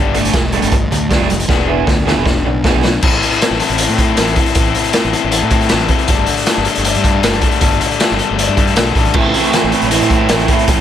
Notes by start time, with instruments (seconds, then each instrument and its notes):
Already playing: fingered electric bass G1, overdriven electric guitar G3 A3 D4
0.14 overdriven electric guitar G3 A3, distorted electric guitar D4 A4, closed hi-hat
0.25 closed hi-hat
0.33 fingered electric bass E1, overdriven electric guitar G3 A3, muted distorted electric guitar stroke, kick, snare, closed hi-hat
0.52 overdriven electric guitar G3 A3, distorted electric guitar D4 A4, closed hi-hat
0.62 fingered electric bass G1, closed hi-hat
0.71 overdriven electric guitar G3 A3, muted distorted electric guitar stroke, kick, closed hi-hat
0.91 fingered electric bass D2, overdriven electric guitar G3 A3, muted distorted electric guitar stroke, closed hi-hat
1.10 overdriven electric guitar G3 A3, distorted electric guitar D4 A4, kick, snare, closed hi-hat
1.20 fingered electric bass F1
1.29 overdriven electric guitar G3 A3, muted distorted electric guitar stroke, closed hi-hat
1.40 closed hi-hat
1.48 fingered electric bass E1, overdriven electric guitar B3 D4 G#4, muted distorted electric guitar stroke, kick, snare
1.67 distorted electric guitar E3 E4 G#4, overdriven electric guitar B3 D4
1.87 fingered electric bass D2, overdriven electric guitar B3 D4, muted distorted electric guitar stroke, kick, snare
2.06 distorted electric guitar E3 E4 G#4, overdriven electric guitar B3 D4, snare
2.17 fingered electric bass E1
2.25 overdriven electric guitar B3 D4, muted distorted electric guitar stroke, kick, snare
2.44 fingered electric bass B1, overdriven electric guitar B3 D4, muted distorted electric guitar stroke
2.64 distorted electric guitar E3 E4 G#4, overdriven electric guitar B3 D4, kick, snare
2.75 fingered electric bass B1
2.83 overdriven electric guitar B3 D4, muted distorted electric guitar stroke, snare
3.01 fingered electric bass A1, overdriven electric guitar E3 C4 E4 A4, kick, crash
3.22 overdriven electric guitar E3 C4 E4 A4, closed hi-hat
3.32 closed hi-hat
3.41 overdriven electric guitar E3 C4 E4 A4, snare, closed hi-hat
3.51 fingered electric bass A1, snare
3.60 overdriven electric guitar E3 C4 E4 A4, closed hi-hat
3.69 fingered electric bass A1, closed hi-hat
3.78 overdriven electric guitar E3 C4 E4 A4, closed hi-hat
3.88 fingered electric bass A2, closed hi-hat
3.98 overdriven electric guitar E3 C4 E4 A4, kick, closed hi-hat
4.17 fingered electric bass A1, overdriven electric guitar E3 C4 E4 A4, snare, closed hi-hat
4.27 closed hi-hat
4.36 overdriven electric guitar E3 C4 E4, kick, closed hi-hat
4.40 overdriven electric guitar A4
4.46 closed hi-hat
4.55 fingered electric bass A1, overdriven electric guitar E3 C4 E4 A4, kick, closed hi-hat
4.65 closed hi-hat
4.74 overdriven electric guitar E3 C4 E4 A4, closed hi-hat
4.84 closed hi-hat
4.93 overdriven electric guitar E3 C4 E4 A4, snare, closed hi-hat
5.03 fingered electric bass A1, snare, closed hi-hat
5.13 overdriven electric guitar E3 C4 E4 A4, closed hi-hat
5.24 fingered electric bass A1
5.31 overdriven electric guitar E3 C4 E4 A4, closed hi-hat
5.43 fingered electric bass A2
5.50 overdriven electric guitar E3 C4 E4 A4, kick, closed hi-hat
5.61 closed hi-hat
5.69 fingered electric bass A1, overdriven electric guitar E3 C4 E4 A4, snare, closed hi-hat
5.79 closed hi-hat
5.88 overdriven electric guitar E3 C4 E4 A4, kick, closed hi-hat
5.98 closed hi-hat
6.08 fingered electric bass G1, overdriven electric guitar G3 A3 D4 A4, kick, closed hi-hat
6.26 overdriven electric guitar G3 A3 D4 A4, closed hi-hat
6.37 closed hi-hat
6.46 overdriven electric guitar G3 A3 D4 A4, snare, closed hi-hat
6.57 fingered electric bass G1
6.65 overdriven electric guitar G3 A3 D4 A4, closed hi-hat
6.75 fingered electric bass G1, closed hi-hat
6.84 overdriven electric guitar G3 A3 D4 A4, closed hi-hat
6.94 fingered electric bass G2, closed hi-hat
7.04 overdriven electric guitar G3 A3 D4 A4, kick, closed hi-hat
7.23 fingered electric bass G1, overdriven electric guitar G3 A3 D4 A4, snare, closed hi-hat
7.32 closed hi-hat
7.41 overdriven electric guitar G3 A3 D4 A4, kick, closed hi-hat
7.51 closed hi-hat
7.60 fingered electric bass G1, overdriven electric guitar G3 A3 D4 A4, kick, closed hi-hat
7.80 overdriven electric guitar G3 A3 D4 A4, closed hi-hat
7.90 closed hi-hat
7.99 overdriven electric guitar G3 A3 D4 A4, snare, closed hi-hat
8.10 fingered electric bass G1, snare
8.17 overdriven electric guitar G3 A3 D4 A4, closed hi-hat
8.30 fingered electric bass G1
8.37 overdriven electric guitar G3 A3 D4 A4, closed hi-hat
8.49 fingered electric bass G2
8.55 overdriven electric guitar G3 A3 D4 A4, kick, closed hi-hat
8.67 closed hi-hat
8.75 fingered electric bass B1, overdriven electric guitar G3 A3 D4 A4, snare, closed hi-hat
8.86 closed hi-hat
8.95 fingered electric bass A1, overdriven electric guitar G3 A3 D4 A4, kick, closed hi-hat
9.05 closed hi-hat
9.14 fingered electric bass A1, distorted electric guitar A2 A3, overdriven electric guitar E3 C4 E4 A4, kick, crash
9.34 distorted electric guitar A2 A3, overdriven electric guitar E3 C4 E4 A4, closed hi-hat
9.44 closed hi-hat
9.53 distorted electric guitar A2 A3, overdriven electric guitar E3 C4 E4 A4, snare, closed hi-hat
9.63 fingered electric bass A1, snare
9.72 distorted electric guitar A2 A3, overdriven electric guitar E3 C4 E4 A4, closed hi-hat
9.82 fingered electric bass A1, closed hi-hat
9.91 distorted electric guitar A2 A3, overdriven electric guitar E3 C4 E4 A4, closed hi-hat
10.00 fingered electric bass A2, closed hi-hat
10.10 distorted electric guitar A2 A3, overdriven electric guitar E3 C4 E4 A4, kick, closed hi-hat
10.29 fingered electric bass A1, distorted electric guitar A2 A3, overdriven electric guitar E3 C4 E4 A4, snare, closed hi-hat
10.39 closed hi-hat
10.48 distorted electric guitar A2 A3, overdriven electric guitar E3 C4 E4 A4, kick, closed hi-hat
10.59 closed hi-hat
10.67 fingered electric bass A1, distorted electric guitar A2 A3, overdriven electric guitar E3 C4 E4 A4, kick, closed hi-hat